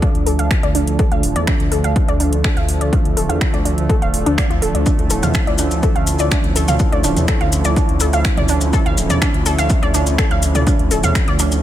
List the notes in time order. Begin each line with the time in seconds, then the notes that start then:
Already playing: D3 F3 A3 D4 A4
0.02 D4, kick, closed hi-hat
0.15 D2, closed hi-hat
0.26 D2 A4, open hi-hat
0.39 D2 F5, closed hi-hat
0.51 finger snap, kick, open hi-hat
0.63 D2 D5, closed hi-hat
0.75 D2 D4, open hi-hat
0.87 D2, closed hi-hat
0.99 A4, kick, closed hi-hat
1.12 D2 F5, closed hi-hat
1.23 D1, open hi-hat
1.36 E2 D5, closed hi-hat
1.47 D4, finger snap, kick, closed hi-hat
1.60 D2, closed hi-hat
1.72 D2 A4, open hi-hat
1.84 D2 F5, closed hi-hat
1.96 kick, closed hi-hat
2.08 D2 D5, closed hi-hat
2.20 D2 D4, open hi-hat
2.33 D2, closed hi-hat
2.44 A4, finger snap, kick, closed hi-hat
2.57 D2 F5, closed hi-hat
2.68 D2, open hi-hat
2.81 D2 D5, closed hi-hat
2.93 D4, kick, closed hi-hat
3.05 D2, closed hi-hat
3.17 D1 A4, open hi-hat
3.29 E2 F5, closed hi-hat
3.41 finger snap, kick, closed hi-hat
3.53 D2 D5, closed hi-hat
3.65 D2 D4, open hi-hat
3.78 D2, closed hi-hat
3.89 A4, kick, closed hi-hat
4.02 D1 F5, closed hi-hat
4.13 D1, open hi-hat
4.26 D2 D4, closed hi-hat
4.38 D5, finger snap, kick, open hi-hat
4.50 D2 F4, closed hi-hat
4.62 D1 A4, open hi-hat
4.74 D2 D4, closed hi-hat
4.86 C#4 D4 E4, kick, closed hi-hat, maracas
4.99 D2, closed hi-hat
5.10 D1 A4, open hi-hat, maracas
5.23 E2 F5, closed hi-hat, mid tom, maracas
5.34 finger snap, kick, closed hi-hat, maracas
5.47 D2 D5, closed hi-hat
5.58 D2 D4, open hi-hat, maracas
5.71 D2, closed hi-hat, maracas
5.83 A4, kick, closed hi-hat, maracas
5.95 D2 F5, closed hi-hat
6.07 D2, open hi-hat, maracas
6.19 D2 D5, closed hi-hat, maracas
6.31 D4, finger snap, kick, closed hi-hat, maracas
6.44 D2, closed hi-hat
6.55 D2 A4, open hi-hat, maracas
6.68 D2 F5, closed hi-hat, mid tom, maracas
6.79 kick, closed hi-hat, maracas
6.92 D2 D5, closed hi-hat
7.04 D1 D4, open hi-hat, maracas
7.16 E2, closed hi-hat, mid tom, maracas
7.28 A4, finger snap, kick, closed hi-hat, maracas
7.41 D2 F5, closed hi-hat
7.52 D2, open hi-hat, maracas
7.65 D2 D5, closed hi-hat, maracas
7.76 D4, kick, closed hi-hat, maracas
7.89 D2, closed hi-hat
8.00 D2 A4, open hi-hat, maracas
8.13 D2 F5, closed hi-hat, maracas
8.25 finger snap, kick, open hi-hat, maracas
8.37 D2 D5, closed hi-hat, mid tom
8.48 D2 D4, open hi-hat, maracas
8.61 D2, closed hi-hat, maracas
8.73 A4, kick, closed hi-hat, maracas
8.86 D2 F5, closed hi-hat
8.97 D1, open hi-hat, maracas
9.10 E2 D5, closed hi-hat, mid tom, maracas
9.22 D4, finger snap, kick, closed hi-hat, maracas
9.34 D2, closed hi-hat
9.46 D2 A4, open hi-hat, maracas
9.58 D2 F5, closed hi-hat, maracas
9.69 kick, closed hi-hat, maracas
9.82 D2 D5, closed hi-hat
9.94 D2 D4, open hi-hat, maracas
10.06 D2, closed hi-hat, maracas
10.18 A4, finger snap, kick, closed hi-hat, maracas
10.31 D2 F5, closed hi-hat
10.42 D2, open hi-hat, maracas
10.55 D2 D5, closed hi-hat, mid tom, maracas
10.67 D4, kick, closed hi-hat, maracas
10.79 D2, closed hi-hat
10.91 D1 A4, open hi-hat, maracas
11.04 E2 F5, closed hi-hat, mid tom, maracas
11.15 finger snap, kick, closed hi-hat, maracas
11.28 D2 D5, closed hi-hat
11.39 D2 D4, open hi-hat, maracas
11.52 D2, closed hi-hat, maracas